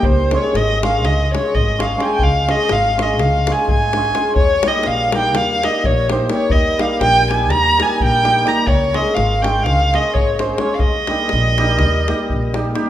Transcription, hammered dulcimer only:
\new Staff \with { instrumentName = "Hammered dulcimer" } { \time 9/8 \key ees \mixolydian \tempo 4. = 84 r8 <aes des' f' aes'>8 r8 <aes des' f' aes'>8 r8 <aes des' f' aes'>8 r8 <aes des' f' aes'>8 <aes des' f' aes'>8 | r8 <aes des' f' aes'>8 r8 <aes des' f' aes'>8 r8 <aes des' f' aes'>8 r8 <aes des' f' aes'>8 <aes des' f' aes'>8 | r8 <g bes ees' g'>8 r8 <g bes ees' g'>8 r8 <g bes ees' g'>8 r8 <g bes ees' g'>8 <g bes ees' g'>8 | r8 <g bes ees' g'>8 r8 <g bes ees' g'>8 r8 <g bes ees' g'>8 r8 <g bes ees' g'>8 <g bes ees' g'>8 |
r8 <aes des' f' aes'>8 r8 <aes des' f' aes'>8 r8 <aes des' f' aes'>8 r8 <aes des' f' aes'>8 <aes des' f' aes'>8 | r8 <g bes ees' g'>8 r8 <g bes ees' g'>8 r8 <g bes ees' g'>8 r8 <g bes ees' g'>8 <g bes ees' g'>8 | }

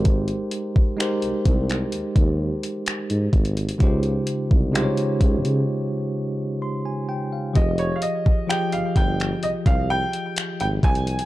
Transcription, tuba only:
\new Staff \with { instrumentName = "Tuba" } { \clef bass \time 4/4 \key f \minor \tempo 4 = 64 aes,,8 r8. c,16 c,8 ees,16 ees,8 r8 aes,16 aes,,8 | des,8 r16 c,8 r16 des,16 des16 r2 | f,,8 r8. g,,16 g,,8 c,16 c,8 r8 aes,,16 c,8 | }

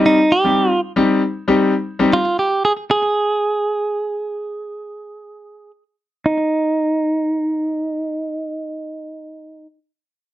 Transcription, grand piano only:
\new Staff \with { instrumentName = "Grand piano" } { \time 4/4 \key c \minor \tempo 4 = 116 <g c' ees' g'>16 r8 <g c' ees' g'>8 r8 <g c' ees' g'>8 r8 <g c' ees' g'>8 r8 <g c' ees' g'>16 | r1 | r1 | r1 |
r1 | }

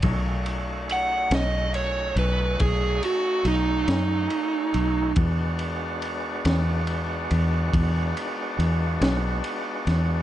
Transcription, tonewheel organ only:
\new Staff \with { instrumentName = "Tonewheel organ" } { \time 12/8 \key b \mixolydian \tempo 4. = 47 <a cis' dis' fis'>1. | <gis b d' fis'>1. | }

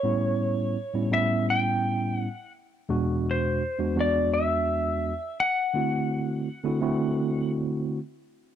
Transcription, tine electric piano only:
\new Staff \with { instrumentName = "Tine electric piano" } { \time 4/4 \key a \mixolydian \tempo 4 = 84 <a, g b cis' e'>4 r16 <a, g b cis' e'>16 <a, g b cis' e'>4. r4 | <e, b, gis d' fis'>4 r16 <e, gis b d' fis'>16 <e, gis b d' fis'>4. r4 | <d a c' e' fis'>4 r16 <d a c' e' fis'>16 <d a c' e' fis'>4. r4 | }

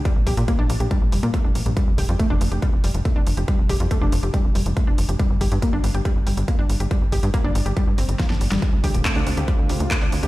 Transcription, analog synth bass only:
\new Staff \with { instrumentName = "Analog synth bass" } { \clef bass \time 4/4 \key g \minor \tempo 4 = 140 r16 bes,,16 bes,,16 bes,16 r16 bes,,16 bes,,16 bes,,16 r16 bes,,16 f,,16 bes,16 r16 f,,16 bes,,16 bes,,16 | r16 f,,16 f,,16 f,16 r16 f,,16 f,,16 f,,16 r16 f,,16 f,,16 f,,16 r16 f,,16 f,,16 f,,16 | r16 f,,16 f,,16 f,16 r16 f,,16 f,,16 f,,16 r16 f,,16 f,,16 f,,16 r16 f,,16 f,,16 f,,16 | r16 g,,16 g,,16 g,16 r16 g,,16 g,,16 g,,16 r16 g,,16 g,,16 g,,16 r16 g,,16 g,,16 g,,16 |
r16 g,,16 g,,16 g,16 r16 g,,16 g,,16 g,,16 r16 g,16 g,,16 g,,16 r16 g,,16 g,,16 g,,16 | r16 d,16 d,16 d,,16 r16 d,16 d,16 d,16 r16 d,16 d,16 d,16 r16 d,16 d,16 d,16 | }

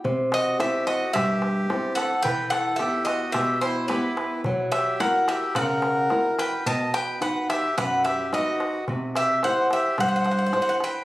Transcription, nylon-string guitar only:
\new Staff \with { instrumentName = "Nylon-string guitar" } { \time 4/4 \key c \lydian \tempo 4 = 109 c4 <c' e' a'>4 g,4 <c' e' a'>4 | e4 <b e' g'>4 b,4 <b e' g'>4 | fis4 <e' fis' ais'>4 cis4 <e' fis' ais'>4 | b,4 <dis' fis' b'>4 fis,4 <dis' fis' b'>4 |
c4 <e' g' c''>4 g,4 <e' g' c''>4 | }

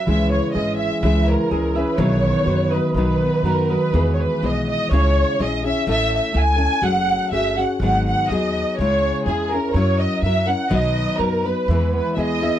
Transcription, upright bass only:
\new Staff \with { instrumentName = "Upright bass" } { \clef bass \time 2/4 \key b \major \tempo 4 = 124 cis,4 gis,,4 | cis,4 cis,4 | b,,4 fis,4 | b,,4 fis,4 |
\key e \major e,4 b,,4 | cis,4 ais,,4 | a,,4 cis,4 | fis,,4 g,,4 |
gis,,4 dis,4 | cis,4 e,4 | fis,4 fis,4 | b,,4 fis,4 |
e,4 dis,4 | }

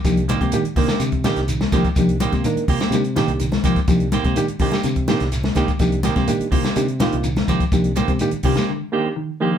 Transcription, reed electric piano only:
\new Staff \with { instrumentName = "Reed electric piano" } { \time 4/4 \key c \minor \tempo 4 = 125 <bes d' ees' g'>8 r8 <bes d' ees' g'>8 <bes d' ees' bes'>8 r8 <bes d' ees' g'>8 r8 <bes d' ees' g'>8 | <bes d' ees' g'>8 r8 <bes d' ees' bes'>8 r8 <bes d' ees' g'>8 <bes d' ees' g'>8 r4 | <bes d' ees' g'>8 r8 <bes d' ees' g'>8 <bes d' ees' g'>8 r8 <bes d' ees' g'>8 r8 <bes d' ees' g'>8 | <bes d' ees' g'>8 r8 <bes d' ees' g'>8 r8 <bes d' ees' g'>8 <bes d' ees' f'>8 r4 |
<bes d' ees' g'>8 r8 <bes d' ees' g'>8 <bes d' ees' g'>8 r8 <bes d' ees' g'>8 r8 <bes d' ees' g'>8 | }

